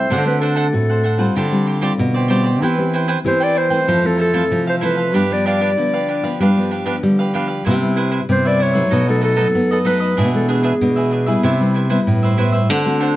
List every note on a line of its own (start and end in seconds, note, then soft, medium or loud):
0.00 0.11 C4 medium
0.00 0.22 C5 medium
0.09 0.70 D3 medium
0.09 0.19 A3 medium
0.09 0.20 C4 soft
0.09 0.40 D4 medium
0.09 0.20 F#4 medium
0.09 0.40 A4 medium
0.09 0.41 C5 medium
0.09 0.41 F#5 medium
0.25 0.68 A3 medium
0.25 0.68 C4 medium
0.25 0.68 F#4 medium
0.25 0.40 B4 medium
0.41 0.55 D4 medium
0.41 1.32 A4 medium
0.41 0.55 A4 medium
0.41 0.55 C5 medium
0.41 0.56 F#5 medium
0.56 0.66 D4 medium
0.56 0.66 A4 medium
0.56 0.66 C5 medium
0.56 0.66 F#5 medium
0.72 1.33 A2 soft
0.72 1.02 A3 soft
0.72 1.02 C4 soft
0.72 1.03 F#4 medium
0.90 1.03 A4 soft
0.90 1.03 C5 soft
0.90 1.04 F#5 soft
1.03 1.19 D4 soft
1.03 1.19 A4 soft
1.03 1.19 C5 soft
1.03 1.18 F#5 soft
1.18 1.46 G3 medium
1.18 1.46 C4 medium
1.18 1.46 F4 medium
1.18 1.35 A4 soft
1.18 1.35 C5 soft
1.18 1.34 F#5 soft
1.35 1.96 D3 soft
1.35 1.65 F4 medium
1.35 1.66 G4 medium
1.35 1.67 C5 medium
1.35 1.67 D5 medium
1.51 1.78 G3 medium
1.51 1.78 C4 medium
1.51 1.78 F4 medium
1.67 1.80 F4 soft
1.67 1.81 G4 soft
1.67 1.81 C5 soft
1.67 1.81 D5 soft
1.81 2.24 G3 medium
1.81 2.25 C4 medium
1.81 1.91 F4 medium
1.81 2.25 F4 medium
1.81 1.92 G4 medium
1.81 1.92 C5 medium
1.81 1.92 D5 medium
1.98 2.62 B2 medium
1.98 2.58 D3 soft
2.14 2.28 G4 soft
2.14 2.29 C5 soft
2.14 2.29 D5 soft
2.28 2.50 G3 medium
2.28 2.50 C4 medium
2.28 2.44 F4 medium
2.28 2.50 F4 medium
2.28 2.45 G4 medium
2.28 2.44 C5 medium
2.28 2.43 D5 medium
2.44 2.61 G4 soft
2.44 2.60 C5 soft
2.44 2.60 D5 soft
2.61 3.21 E3 medium
2.61 2.72 B3 medium
2.61 2.72 C4 soft
2.61 2.92 E4 medium
2.61 2.73 G4 medium
2.61 2.93 B4 medium
2.61 2.93 C5 medium
2.61 2.93 G5 medium
2.78 3.20 B3 medium
2.78 3.20 C4 medium
2.78 3.20 G4 medium
2.93 3.07 E4 medium
2.93 3.07 B4 medium
2.93 3.07 C5 medium
2.93 3.08 G5 medium
3.08 3.17 E4 medium
3.08 3.18 B4 medium
3.08 3.18 C5 medium
3.08 3.18 G5 medium
3.24 3.69 E3 medium
3.24 3.54 B3 soft
3.24 3.54 C4 medium
3.24 3.55 G4 medium
3.24 3.45 C5 medium
3.40 3.55 B4 soft
3.40 3.54 C5 soft
3.40 3.59 D5 loud
3.40 3.55 G5 soft
3.55 3.70 E4 soft
3.55 3.70 B4 soft
3.55 3.70 C5 soft
3.55 4.08 C5 medium
3.55 3.69 G5 soft
3.70 3.98 E3 medium
3.70 3.98 A3 medium
3.70 3.98 C4 medium
3.70 3.86 B4 soft
3.70 3.87 C5 soft
3.70 3.86 G5 soft
3.87 4.47 F2 soft
3.87 4.42 F3 medium
3.87 4.17 A4 medium
3.87 4.17 C5 medium
3.87 4.18 F5 medium
4.04 4.30 E3 medium
4.04 4.30 A3 medium
4.04 4.31 C4 medium
4.04 4.21 A4 medium
4.17 4.32 E4 soft
4.17 4.33 A4 soft
4.17 4.64 A4 medium
4.17 4.33 C5 soft
4.17 4.33 F5 medium
4.33 4.76 E3 medium
4.33 4.77 A3 medium
4.33 4.77 C4 medium
4.33 4.43 E4 medium
4.33 4.44 A4 medium
4.33 4.44 C5 medium
4.33 4.44 F5 medium
4.51 5.10 C3 medium
4.51 5.14 F3 medium
4.67 4.81 A4 soft
4.67 4.81 C5 soft
4.67 4.76 C5 medium
4.67 4.81 F5 soft
4.81 5.03 E3 medium
4.81 5.03 A3 medium
4.81 5.03 C4 medium
4.81 4.96 E4 medium
4.81 4.97 A4 medium
4.81 5.34 B4 medium
4.81 4.97 C5 medium
4.81 4.96 F5 medium
4.97 5.13 A4 soft
4.97 5.13 C5 soft
4.97 5.12 F5 soft
5.14 5.74 G2 medium
5.14 5.24 F3 medium
5.14 5.77 G3 medium
5.14 5.24 B3 soft
5.14 5.44 D4 medium
5.14 5.24 D4 medium
5.14 5.44 G4 medium
5.14 5.45 B4 medium
5.14 5.45 F5 medium
5.31 5.72 F3 medium
5.31 5.73 B3 medium
5.31 5.73 D4 medium
5.31 5.47 D5 medium
5.46 5.59 D4 medium
5.46 5.60 G4 medium
5.46 5.60 B4 medium
5.46 6.37 D5 medium
5.46 5.60 F5 medium
5.61 5.70 D4 medium
5.61 5.70 G4 medium
5.61 5.70 B4 medium
5.61 5.70 F5 medium
5.78 6.37 D3 soft
5.78 6.19 F3 soft
5.78 6.20 B3 medium
5.78 6.20 D4 medium
5.93 6.08 G4 soft
5.93 6.08 B4 soft
5.93 6.07 F5 soft
6.08 6.23 D4 soft
6.08 6.23 G4 soft
6.08 6.23 B4 soft
6.08 6.22 F5 soft
6.23 6.50 F3 medium
6.23 6.50 B3 medium
6.23 6.50 D4 medium
6.23 6.39 G4 soft
6.23 6.39 B4 soft
6.23 6.38 F5 soft
6.40 7.00 G2 soft
6.40 6.93 G3 medium
6.40 6.70 D4 medium
6.40 6.70 G4 medium
6.40 6.71 B4 medium
6.40 6.71 F5 medium
6.56 6.82 F3 medium
6.56 6.83 B3 medium
6.56 6.83 D4 medium
6.71 6.84 D4 soft
6.71 6.85 G4 soft
6.71 6.85 B4 soft
6.71 6.86 F5 soft
6.86 7.28 F3 medium
6.86 7.28 B3 medium
6.86 6.95 D4 medium
6.86 7.29 D4 medium
6.86 6.95 G4 medium
6.86 6.95 B4 medium
6.86 6.96 F5 medium
7.03 7.63 D3 medium
7.03 7.66 G3 medium
7.19 7.33 G4 soft
7.19 7.34 B4 soft
7.19 7.33 F5 soft
7.34 7.63 F3 medium
7.34 7.63 B3 medium
7.34 7.48 D4 medium
7.34 7.63 D4 medium
7.34 7.48 G4 medium
7.34 7.47 B4 medium
7.34 7.47 F5 medium
7.48 7.64 G4 soft
7.48 7.64 B4 soft
7.48 7.63 F5 soft
7.65 8.26 C3 medium
7.65 7.75 G3 medium
7.65 7.76 B3 soft
7.65 7.95 E4 medium
7.65 7.76 E4 medium
7.65 7.96 B4 medium
7.65 7.96 C5 medium
7.65 7.96 E5 medium
7.82 8.24 G3 medium
7.82 8.24 B3 medium
7.82 8.24 E4 medium
7.96 8.10 E4 medium
7.96 8.11 B4 medium
7.96 8.10 C5 medium
7.96 8.11 E5 medium
8.11 8.21 E4 medium
8.11 8.21 B4 medium
8.11 8.21 C5 medium
8.11 8.21 E5 medium
8.29 8.88 G2 soft
8.29 8.82 C3 medium
8.29 8.71 G3 soft
8.29 8.71 B3 medium
8.29 8.71 E4 soft
8.29 8.49 C5 medium
8.45 8.60 B4 soft
8.45 8.59 C5 soft
8.45 8.64 D5 medium
8.45 8.59 E5 soft
8.59 8.74 E4 soft
8.59 8.73 B4 soft
8.59 8.74 C5 soft
8.59 9.08 C#5 medium
8.59 8.72 E5 soft
8.73 9.02 F#3 medium
8.73 9.02 A3 medium
8.73 9.02 D#4 medium
8.73 8.90 B4 soft
8.73 8.90 C5 soft
8.73 8.89 E5 soft
8.91 9.52 B2 medium
8.91 9.20 D#4 medium
8.91 9.20 A4 medium
8.91 9.21 B4 medium
8.91 9.22 D#5 medium
9.08 9.34 F#3 soft
9.08 9.34 A3 medium
9.08 9.34 D#4 medium
9.08 9.23 A4 medium
9.21 9.35 D#4 soft
9.21 9.35 A4 soft
9.21 9.68 A4 medium
9.21 9.35 B4 soft
9.21 9.36 D#5 soft
9.36 9.80 F#3 medium
9.36 9.81 A3 medium
9.36 9.46 D#4 medium
9.36 9.81 D#4 medium
9.36 9.47 A4 medium
9.36 9.47 B4 medium
9.36 9.47 D#5 medium
9.55 10.14 F#2 soft
9.55 10.18 B3 medium
9.71 9.79 A4 medium
9.71 9.85 A4 soft
9.71 9.85 B4 soft
9.71 9.85 D#5 soft
9.85 10.14 F#3 medium
9.85 10.15 A3 medium
9.85 10.00 D#4 medium
9.85 10.15 D#4 medium
9.85 10.00 A4 medium
9.85 9.99 B4 medium
9.85 10.30 B4 medium
9.85 9.99 D#5 medium
10.00 10.16 A4 soft
10.00 10.16 B4 soft
10.00 10.15 D#5 soft
10.17 10.77 B2 soft
10.17 10.27 E3 medium
10.17 10.27 G#3 medium
10.17 10.47 D4 medium
10.17 10.27 D4 medium
10.17 10.48 G#4 medium
10.17 10.48 B4 medium
10.17 10.48 E5 medium
10.33 10.76 E3 medium
10.33 10.76 G#3 medium
10.33 10.76 D4 medium
10.33 10.50 A4 medium
10.48 10.62 D4 medium
10.48 11.43 G#4 medium
10.48 10.62 G#4 medium
10.48 10.63 B4 medium
10.48 10.63 E5 medium
10.63 10.73 D4 medium
10.63 10.73 G#4 medium
10.63 10.73 B4 medium
10.63 10.73 E5 medium
10.81 11.41 B2 medium
10.81 11.23 E3 medium
10.81 11.23 G#3 medium
10.81 11.23 D4 medium
10.96 11.10 G#4 soft
10.96 11.11 B4 soft
10.96 11.11 E5 soft
11.11 11.26 D4 soft
11.11 11.26 G#4 soft
11.11 11.26 B4 medium
11.11 11.25 E5 soft
11.26 11.54 G3 medium
11.26 11.54 B3 medium
11.26 11.54 E4 medium
11.26 11.42 G#4 soft
11.26 11.42 B4 soft
11.26 11.42 E5 soft
11.43 12.03 C3 soft
11.43 11.73 E4 medium
11.43 11.74 B4 medium
11.43 11.74 C5 medium
11.43 11.75 E5 medium
11.60 11.86 G3 medium
11.60 11.86 B3 medium
11.60 11.87 E4 medium
11.74 11.88 E4 soft
11.74 11.89 B4 soft
11.74 11.89 C5 soft
11.74 11.90 E5 medium
11.89 12.32 G3 medium
11.89 12.33 B3 medium
11.89 11.99 E4 medium
11.89 12.33 E4 medium
11.89 12.00 B4 medium
11.89 11.99 C5 medium
11.89 12.00 E5 medium
12.06 12.66 G2 medium
12.06 12.70 A2 medium
12.23 12.38 B4 soft
12.23 12.37 C5 soft
12.23 12.37 E5 soft
12.37 12.58 G3 medium
12.37 12.58 B3 medium
12.37 12.52 E4 medium
12.37 12.58 E4 medium
12.37 12.52 B4 medium
12.37 12.53 C5 medium
12.37 12.51 E5 medium
12.52 12.68 B4 soft
12.52 12.69 C5 soft
12.52 12.68 E5 medium
12.69 13.16 D3 soft
12.69 12.79 A3 medium
12.69 12.79 C4 medium
12.69 12.99 D4 medium
12.69 12.79 F#4 medium
12.69 13.00 A4 medium
12.69 13.01 C5 medium
12.69 13.01 F#5 medium
12.86 13.16 A3 medium
12.86 13.16 C4 medium
12.86 13.16 F#4 medium
13.00 13.14 D4 medium
13.00 13.15 A4 medium
13.00 13.15 C5 medium
13.00 13.16 F#5 medium